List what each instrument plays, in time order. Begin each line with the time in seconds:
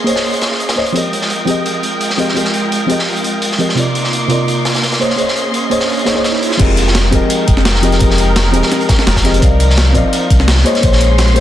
Already playing: synth stab A#3 G#4 C5 C#5 D#5, string section A#3 C#4 G#4 D#5 C6
0.04 synth stab A#3 G#4 C5, closed hi-hat
0.08 synth stab C#5 D#5
0.16 snare
0.24 open hi-hat
0.34 closed hi-hat
0.41 snare, closed hi-hat
0.51 snare
0.60 closed hi-hat
0.69 snare, closed hi-hat
0.76 synth stab A#3 G#4 C5 C#5 D#5, snare
0.86 closed hi-hat
0.92 synth stab F3 C4 G4 G#4, string section G#3 F4 A#4 G5, closed hi-hat
0.97 synth stab A#4 D#5
1.13 closed hi-hat
1.22 snare
1.30 closed hi-hat
1.45 synth stab F3 C4 G4 G#4, closed hi-hat
1.49 synth stab A#4 D#5
1.66 closed hi-hat
1.83 closed hi-hat
2.01 closed hi-hat
2.10 snare
2.17 synth stab F3 C4 G4 G#4 A#4 D#5, closed hi-hat
2.29 snare
2.33 synth stab F3 C4 G4 G#4, closed hi-hat
2.38 synth stab A#4 D#5
2.45 snare
2.54 closed hi-hat
2.72 closed hi-hat
2.86 synth stab F3 C4 G4 G#4, closed hi-hat
2.90 synth stab A#4 D#5
2.99 snare
3.07 open hi-hat
3.16 closed hi-hat
3.24 closed hi-hat
3.42 closed hi-hat
3.52 snare
3.58 synth stab F3 C4 G4 G#4 A#4 D#5, closed hi-hat
3.69 snare
3.75 synth stab C3 C4 F4 A#4, string section A#3 D#4 C6 D6, closed hi-hat, riser
3.79 synth stab D5 D#5
3.95 closed hi-hat
4.04 snare
4.13 closed hi-hat
4.27 synth stab C3 C4 F4 A#4, closed hi-hat
4.32 synth stab D5 D#5
4.48 closed hi-hat
4.65 snare, closed hi-hat
4.74 snare, closed hi-hat
4.82 snare, closed hi-hat
4.92 snare, closed hi-hat
4.99 synth stab A#3 G#4 C5 C#5 D#5, string section C#4 G#4 D#5, closed hi-hat
5.10 snare
5.16 synth stab A#3 G#4 C5 C#5, closed hi-hat
5.21 synth stab D#5
5.28 snare
5.36 closed hi-hat
5.54 closed hi-hat
5.70 synth stab A#3 G#4 C5 C#5 D#5, closed hi-hat
5.81 snare
5.89 open hi-hat
5.99 closed hi-hat
6.05 synth stab A#3 G#4 C5 C#5 D#5, snare, closed hi-hat
6.15 synth stab A#3 G#4 C5 C#5 D#5
6.24 snare, closed hi-hat
6.34 snare
6.43 closed hi-hat
6.52 snare
6.57 sub bass F1, synth stab F3 C4 G4 G#4, string section G#3 D#4 A#4 G5, kick, closed hi-hat, crash
6.61 synth stab A#4 D#5
6.77 closed hi-hat
6.88 snare
6.95 snare, closed hi-hat
7.10 sub bass D#1, synth stab F3 C4 G4 G#4, kick, closed hi-hat
7.14 synth stab A#4 D#5
7.30 closed hi-hat
7.48 sub bass F1, kick, closed hi-hat
7.57 snare
7.65 snare, closed hi-hat
7.75 snare
7.82 synth stab F3 C4 G4 G#4 A#4 D#5, closed hi-hat
7.92 snare, closed hi-hat
7.98 sub bass F1, synth stab F3 C4 G4 G#4, kick, closed hi-hat
8.03 synth stab A#4 D#5
8.11 snare
8.18 closed hi-hat
8.36 snare, closed hi-hat
8.51 sub bass D#1, synth stab F3 C4 G4 G#4, closed hi-hat
8.55 synth stab A#4 D#5
8.63 snare
8.71 snare, closed hi-hat, open hi-hat
8.81 closed hi-hat
8.89 kick, snare, closed hi-hat
8.99 snare
9.07 sub bass F1, snare, closed hi-hat
9.16 kick, snare, closed hi-hat
9.23 synth stab F3 C4 G4 G#4 A#4 D#5, snare, closed hi-hat
9.34 closed hi-hat
9.39 sub bass C2, string section F3 D#4, synth stab C4 A#4 D5, kick, closed hi-hat
9.43 synth stab D#5 F5
9.60 closed hi-hat
9.70 snare
9.77 snare, closed hi-hat
9.92 sub bass A#1, synth stab C4 A#4 D5, kick, closed hi-hat
9.96 synth stab D#5 F5
10.13 closed hi-hat
10.30 sub bass C2, kick, closed hi-hat
10.40 snare
10.48 snare, closed hi-hat
10.57 snare
10.64 string section G#3 C#4 C6, synth stab A#3 G#4 C5 C#5 D#5, closed hi-hat
10.75 snare, closed hi-hat
10.81 sub bass A#1, synth stab A#3 G#4 C5 C#5, kick, closed hi-hat
10.86 synth stab D#5
10.93 snare
11.01 closed hi-hat
11.18 snare, closed hi-hat
11.28 closed hi-hat
11.34 sub bass G#1, synth stab A#3 G#4 C5, closed hi-hat